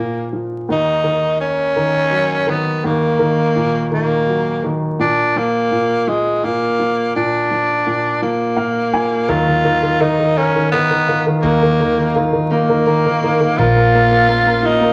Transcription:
0.00 0.70 A#2 medium
0.00 0.33 F3 soft
0.00 0.30 A#3 medium
0.33 0.67 F3 soft
0.69 2.79 D#2 medium
0.69 1.38 D#4 medium
1.04 1.75 D#3 soft
1.41 2.51 C#4 medium
1.76 2.45 D#3 soft
2.11 3.50 F#3 soft
2.47 3.18 D#3 soft
2.47 2.84 B3 medium
2.84 4.95 D#2 medium
2.84 3.88 A#3 medium
3.19 3.90 D#3 soft
3.56 4.95 A#2 soft
3.91 4.62 D#3 soft
3.91 4.69 A#3 medium
4.28 4.97 F#3 soft
4.64 4.98 D#3 soft
4.99 5.70 A#2 medium
4.99 5.39 D4 medium
5.36 6.06 F3 soft
5.36 6.10 A#3 medium
5.71 6.42 A#2 soft
6.07 6.78 F3 soft
6.07 6.46 G#3 medium
6.44 7.15 A#2 soft
6.44 7.15 A#3 medium
6.79 7.50 F3 soft
7.16 7.85 A#2 medium
7.16 8.18 D4 medium
7.51 8.21 F3 soft
7.86 8.56 A#2 soft
8.22 8.92 F3 soft
8.22 9.31 A#3 medium
8.57 9.27 A#2 soft
8.57 8.90 F5 medium
8.93 9.28 F3 soft
8.93 9.27 G#5 medium
9.28 11.40 D#2 medium
9.28 9.46 D#3 medium
9.28 11.42 F#3 medium
9.28 10.03 F4 medium
9.48 9.63 D#3 soft
9.64 9.82 D#3 soft
9.64 10.35 D#4 soft
9.83 9.99 D#3 soft
10.00 10.18 D#3 soft
10.00 10.39 D#4 medium
10.00 11.07 F4 medium
10.20 10.54 D#3 soft
10.36 10.71 C#4 medium
10.36 11.78 D#4 soft
10.36 12.48 A#4 medium
10.56 10.72 D#3 soft
10.72 10.89 D#3 soft
10.72 11.25 B3 medium
10.91 11.07 D#3 soft
11.07 11.25 D#3 soft
11.07 12.14 F4 medium
11.27 11.42 D#3 soft
11.42 13.55 D#2 medium
11.42 11.61 D#3 medium
11.42 13.58 F#3 medium
11.42 12.19 A#3 medium
11.63 11.79 D#3 medium
11.79 11.97 D#3 soft
11.79 12.49 D#4 soft
11.98 12.14 D#3 soft
12.15 12.31 D#3 medium
12.15 13.22 F4 medium
12.33 12.68 D#3 soft
12.50 13.55 A#3 medium
12.50 13.59 A#3 medium
12.50 13.65 D#4 soft
12.69 12.85 D#3 soft
12.86 13.04 D#3 soft
12.86 13.94 A#3 soft
13.06 13.22 D#3 soft
13.23 13.39 D#3 soft
13.23 14.93 F4 medium
13.41 13.58 D#3 soft
13.58 14.93 A#1 medium
13.58 14.93 F3 medium
13.58 13.74 A#3 medium
13.58 14.68 F4 medium
13.76 13.93 A#3 medium
13.95 14.66 A#3 medium
13.95 14.10 A#3 medium
14.11 14.27 A#3 soft
14.29 14.45 A#3 soft
14.29 14.93 C#4 medium
14.47 14.80 A#3 medium
14.63 14.93 A#3 soft
14.63 14.93 D#4 medium
14.63 14.93 F4 medium
14.81 14.93 A#3 soft

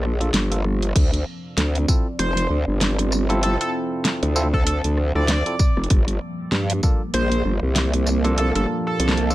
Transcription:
0.00 0.32 A#1 medium
0.00 0.92 F3 medium
0.00 0.92 G3 medium
0.00 0.92 A#3 medium
0.00 cross-stick medium
0.21 0.29 A#3 medium
0.21 0.29 D4 medium
0.21 0.29 F4 medium
0.21 0.29 A4 medium
0.21 closed hi-hat soft
0.34 0.93 G1 medium
0.34 snare loud
0.34 closed hi-hat medium
0.51 0.60 A#3 medium
0.51 0.60 D4 medium
0.51 0.60 F4 medium
0.51 0.60 A4 medium
0.51 closed hi-hat medium
0.82 closed hi-hat soft
0.89 cross-stick soft
0.96 1.24 D2 loud
0.96 9.35 F3 medium
0.96 5.86 C4 medium
0.96 5.87 D5 medium
0.96 kick loud
0.96 closed hi-hat medium
0.96 crash medium
1.14 closed hi-hat medium
1.57 1.86 D2 loud
1.57 snare loud
1.57 closed hi-hat medium
1.75 closed hi-hat medium
1.88 2.06 C4 medium
1.88 2.06 E4 medium
1.88 2.06 F4 medium
1.88 2.06 A4 medium
1.88 kick loud
1.88 tambourine medium
2.19 2.48 F1 loud
2.19 2.47 C5 medium
2.19 closed hi-hat medium
2.37 closed hi-hat medium
2.50 2.65 D2 loud
2.68 3.58 G1 medium
2.81 snare loud
2.81 closed hi-hat medium
2.99 closed hi-hat medium
3.12 cross-stick medium
3.12 tambourine medium
3.30 4.33 C4 medium
3.30 4.33 E4 medium
3.30 4.33 F4 medium
3.30 4.33 A4 loud
3.30 closed hi-hat soft
3.43 3.54 A4 medium
3.43 closed hi-hat medium
3.61 3.69 A4 medium
3.61 closed hi-hat medium
4.05 snare loud
4.05 closed hi-hat medium
4.23 4.82 D2 medium
4.23 closed hi-hat medium
4.36 4.47 C4 medium
4.36 4.47 E4 medium
4.36 4.47 F4 medium
4.36 4.47 A4 loud
4.36 tambourine medium
4.54 4.62 A4 medium
4.54 kick medium
4.67 4.78 A4 medium
4.67 closed hi-hat medium
4.84 5.13 D2 loud
4.84 closed hi-hat medium
4.97 cross-stick medium
5.15 5.43 D2 loud
5.15 5.24 C4 medium
5.15 5.24 E4 medium
5.15 5.24 F4 medium
5.15 5.24 A4 medium
5.15 5.77 D5 loud
5.28 snare loud
5.28 closed hi-hat medium
5.46 5.55 C4 medium
5.46 5.55 E4 medium
5.46 5.55 F4 medium
5.46 5.55 A4 medium
5.46 closed hi-hat medium
5.59 kick loud
5.59 tambourine medium
5.77 5.88 F1 loud
5.77 cross-stick soft
5.84 closed hi-hat soft
5.90 6.19 G1 loud
5.90 9.35 G3 medium
5.90 9.35 A#3 medium
5.90 kick loud
5.90 closed hi-hat medium
6.08 closed hi-hat medium
6.52 6.81 G2 loud
6.52 snare loud
6.70 closed hi-hat medium
6.83 7.01 A#3 medium
6.83 7.01 D4 medium
6.83 7.01 F4 medium
6.83 7.01 A4 medium
6.83 kick loud
6.83 tambourine medium
7.14 7.43 A#1 loud
7.14 7.42 C5 loud
7.14 closed hi-hat medium
7.32 closed hi-hat medium
7.45 7.60 G1 loud
7.63 8.53 C2 loud
7.76 snare loud
7.76 closed hi-hat medium
7.93 closed hi-hat medium
8.07 cross-stick soft
8.07 tambourine medium
8.25 9.27 A#3 loud
8.25 9.27 D4 medium
8.25 9.27 F4 medium
8.25 9.27 A4 loud
8.25 closed hi-hat soft
8.38 8.49 A4 medium
8.38 closed hi-hat medium
8.55 8.67 G1 loud
8.55 8.64 A4 medium
8.55 closed hi-hat medium
8.87 9.31 A4 loud
9.00 9.35 C2 loud
9.00 closed hi-hat medium
9.09 snare loud
9.17 closed hi-hat medium
9.30 9.35 A#3 medium
9.30 9.35 D4 medium
9.30 9.35 F4 medium
9.30 9.35 A4 loud
9.30 tambourine medium

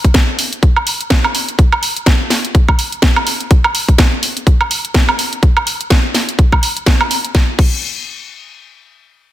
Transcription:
0.04 kick medium
0.04 closed hi-hat medium
0.14 kick loud
0.14 snare loud
0.14 closed hi-hat medium
0.39 open hi-hat loud
0.53 closed hi-hat soft
0.63 kick loud
0.63 closed hi-hat medium
0.76 high woodblock medium
0.87 open hi-hat loud
1.01 closed hi-hat soft
1.10 kick loud
1.10 snare loud
1.10 closed hi-hat medium
1.24 high woodblock medium
1.35 open hi-hat loud
1.49 closed hi-hat soft
1.59 kick loud
1.59 closed hi-hat medium
1.72 high woodblock medium
1.83 open hi-hat loud
1.96 closed hi-hat medium
2.06 kick loud
2.06 snare loud
2.06 closed hi-hat medium
2.30 snare medium
2.30 open hi-hat loud
2.45 closed hi-hat medium
2.55 kick loud
2.55 closed hi-hat medium
2.69 kick medium
2.69 high woodblock medium
2.79 open hi-hat loud
2.92 closed hi-hat medium
3.02 kick loud
3.02 snare loud
3.02 closed hi-hat medium
3.16 high woodblock medium
3.27 open hi-hat loud
3.40 closed hi-hat medium
3.51 kick loud
3.51 closed hi-hat medium
3.64 high woodblock medium
3.75 open hi-hat loud
3.88 kick medium
3.88 closed hi-hat medium
3.98 kick loud
3.98 snare loud
3.98 closed hi-hat medium
4.23 open hi-hat loud
4.37 closed hi-hat medium
4.47 kick loud
4.47 closed hi-hat medium
4.61 high woodblock medium
4.71 open hi-hat loud
4.85 closed hi-hat medium
4.94 kick loud
4.94 snare loud
4.94 closed hi-hat medium
5.09 high woodblock medium
5.19 open hi-hat loud
5.33 closed hi-hat medium
5.43 kick loud
5.43 closed hi-hat medium
5.57 high woodblock medium
5.67 open hi-hat loud
5.81 closed hi-hat medium
5.90 kick loud
5.90 snare loud
5.90 closed hi-hat medium
6.14 snare medium
6.14 open hi-hat medium
6.29 closed hi-hat medium
6.39 kick loud
6.39 closed hi-hat medium
6.52 kick medium
6.52 high woodblock medium
6.63 open hi-hat loud
6.77 closed hi-hat medium
6.86 kick loud
6.86 snare loud
6.86 closed hi-hat medium
7.01 high woodblock medium
7.11 open hi-hat loud
7.25 closed hi-hat medium
7.35 kick loud
7.35 snare medium
7.59 kick loud
7.59 crash medium

